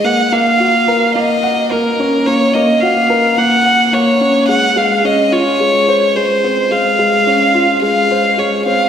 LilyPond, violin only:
\new Staff \with { instrumentName = "Violin" } { \time 4/4 \key ges \lydian \tempo 4 = 108 ges''8 f''4. ees''4 bes'4 | des''8 ees''8 f''4 ges''4 des''4 | ges''8 f''8 ees''8 des''4. c''4 | f''2 f''4 des''8 f''8 | }